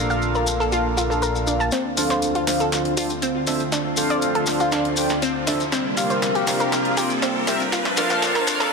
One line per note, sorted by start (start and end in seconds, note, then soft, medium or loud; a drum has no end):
0.00 1.70 A#1 medium
0.00 1.70 A#3 medium
0.00 1.68 D4 medium
0.00 1.69 D4 medium
0.00 1.69 F4 medium
0.00 1.69 A4 medium
0.00 1.69 A#4 medium
0.00 1.69 F5 medium
0.10 0.17 F5 medium
0.10 shekere soft
0.22 shekere soft
0.35 0.45 A#4 medium
0.35 shekere soft
0.47 shekere medium
0.60 0.70 A4 loud
0.60 shekere soft
0.72 0.83 F4 loud
0.72 shekere soft
0.97 1.02 F4 medium
0.97 shekere medium
1.10 1.17 A4 medium
1.10 shekere soft
1.22 1.27 A#4 medium
1.22 shekere medium
1.35 shekere soft
1.47 1.52 D4 medium
1.47 shekere medium
1.60 1.70 A5 loud
1.60 shekere soft
1.72 5.68 D2 medium
1.72 5.68 D3 medium
1.72 5.68 C4 medium
1.72 1.83 C4 medium
1.72 7.68 F4 medium
1.72 snare soft
1.72 closed hi-hat medium
1.72 riser medium
1.72 shekere medium
1.97 2.44 D4 medium
1.97 2.44 F4 medium
1.97 2.44 A4 medium
1.97 2.44 C5 medium
1.97 2.44 F5 loud
1.97 open hi-hat loud
1.97 shekere medium
2.10 2.17 C5 medium
2.10 snare soft
2.10 closed hi-hat medium
2.10 shekere soft
2.22 closed hi-hat medium
2.22 shekere soft
2.35 2.42 F4 loud
2.35 closed hi-hat soft
2.47 2.94 D4 medium
2.47 2.94 F4 medium
2.47 2.94 A4 medium
2.47 2.94 C5 medium
2.47 2.94 F5 medium
2.47 snare soft
2.47 open hi-hat loud
2.47 shekere medium
2.60 2.67 A4 medium
2.60 closed hi-hat medium
2.60 shekere soft
2.72 snare medium
2.72 closed hi-hat medium
2.72 shekere soft
2.85 closed hi-hat soft
2.97 3.12 D4 medium
2.97 3.02 F4 loud
2.97 3.12 F4 medium
2.97 3.12 A4 medium
2.97 3.12 C5 medium
2.97 3.12 G5 medium
2.97 open hi-hat loud
2.97 shekere medium
3.10 closed hi-hat medium
3.10 shekere soft
3.22 3.30 C4 medium
3.22 closed hi-hat medium
3.22 shekere medium
3.47 3.55 C4 medium
3.47 3.62 D4 medium
3.47 3.62 F4 medium
3.47 3.62 A4 medium
3.47 3.62 C5 medium
3.47 3.62 E5 loud
3.47 snare medium
3.47 open hi-hat loud
3.47 shekere medium
3.60 closed hi-hat medium
3.60 shekere soft
3.72 3.80 D4 medium
3.72 snare medium
3.72 closed hi-hat medium
3.72 shekere medium
3.97 4.44 D4 medium
3.97 4.44 F4 medium
3.97 4.44 A4 medium
3.97 4.44 C5 medium
3.97 4.44 F5 loud
3.97 open hi-hat loud
3.97 shekere loud
4.10 4.17 D5 loud
4.10 closed hi-hat medium
4.10 shekere soft
4.22 closed hi-hat medium
4.22 shekere medium
4.35 4.45 A4 medium
4.35 closed hi-hat soft
4.47 4.94 D4 medium
4.47 4.94 F4 medium
4.47 4.94 A4 medium
4.47 4.94 C5 medium
4.47 4.94 F5 medium
4.47 snare medium
4.47 open hi-hat loud
4.47 shekere medium
4.60 4.70 F4 loud
4.60 closed hi-hat medium
4.60 shekere soft
4.72 4.83 D4 loud
4.72 snare medium
4.72 closed hi-hat medium
4.72 shekere medium
4.85 closed hi-hat soft
4.97 5.12 D4 medium
4.97 5.12 F4 medium
4.97 5.12 A4 medium
4.97 5.12 C5 medium
4.97 5.12 G5 medium
4.97 open hi-hat loud
4.97 shekere medium
5.09 snare medium
5.09 closed hi-hat medium
5.09 shekere soft
5.22 5.33 C4 loud
5.22 closed hi-hat medium
5.22 shekere soft
5.47 5.52 D4 medium
5.47 5.62 D4 medium
5.47 5.62 F4 medium
5.47 5.62 A4 medium
5.47 5.62 C5 medium
5.47 5.62 E5 loud
5.47 snare medium
5.47 open hi-hat loud
5.47 shekere medium
5.60 closed hi-hat medium
5.60 shekere soft
5.72 7.70 C3 medium
5.72 7.70 G3 medium
5.72 7.70 A#3 medium
5.72 5.83 C4 medium
5.72 7.70 D4 medium
5.72 snare medium
5.72 closed hi-hat medium
5.72 shekere medium
5.97 6.44 C4 medium
5.97 6.44 F4 medium
5.97 6.44 G4 medium
5.97 6.44 A#4 medium
5.97 6.44 F5 loud
5.97 snare medium
5.97 open hi-hat loud
5.97 shekere loud
6.10 6.17 C5 medium
6.10 closed hi-hat medium
6.10 shekere soft
6.22 snare medium
6.22 closed hi-hat medium
6.22 shekere medium
6.35 6.42 G4 loud
6.35 closed hi-hat soft
6.47 6.94 C4 medium
6.47 6.94 F4 medium
6.47 6.94 G4 medium
6.47 6.94 A#4 medium
6.47 6.94 F5 medium
6.47 snare medium
6.47 open hi-hat loud
6.47 shekere medium
6.60 6.67 A#4 medium
6.60 closed hi-hat medium
6.60 shekere soft
6.72 snare medium
6.72 closed hi-hat medium
6.72 shekere medium
6.85 closed hi-hat soft
6.97 7.12 C4 medium
6.97 7.12 F4 medium
6.97 7.02 G4 loud
6.97 7.12 G4 medium
6.97 7.12 A#4 medium
6.97 7.12 G5 medium
6.97 snare medium
6.97 open hi-hat loud
6.97 shekere medium
7.10 closed hi-hat medium
7.10 shekere soft
7.22 7.30 C4 medium
7.22 snare medium
7.22 closed hi-hat medium
7.22 shekere medium
7.47 7.54 C4 medium
7.47 7.62 C4 medium
7.47 7.62 F4 medium
7.47 7.62 G4 medium
7.47 7.62 A#4 medium
7.47 7.62 E5 loud
7.47 snare medium
7.47 open hi-hat loud
7.47 shekere medium
7.60 closed hi-hat medium
7.60 shekere soft
7.72 8.71 A#2 medium
7.72 8.71 F3 medium
7.72 8.71 C4 medium
7.72 8.71 D4 medium
7.72 7.80 F4 medium
7.72 8.71 A5 medium
7.72 snare loud
7.72 closed hi-hat medium
7.72 shekere medium
7.85 snare medium
7.85 closed hi-hat soft
7.97 8.44 D4 medium
7.97 8.44 F4 medium
7.97 8.44 A4 medium
7.97 8.44 A#4 medium
7.97 8.44 F5 loud
7.97 snare medium
7.97 open hi-hat loud
7.97 shekere loud
8.10 8.17 F5 loud
8.10 snare medium
8.10 closed hi-hat medium
8.10 shekere soft
8.22 snare loud
8.22 closed hi-hat medium
8.22 shekere medium
8.35 8.45 A#4 medium
8.35 snare medium
8.35 closed hi-hat soft
8.47 8.72 D4 medium
8.47 8.72 F4 medium
8.47 8.72 A4 medium
8.47 8.72 A#4 medium
8.47 8.72 F5 medium
8.47 snare loud
8.47 open hi-hat loud
8.47 shekere loud
8.60 8.70 A4 loud
8.60 snare medium
8.60 closed hi-hat medium
8.60 shekere soft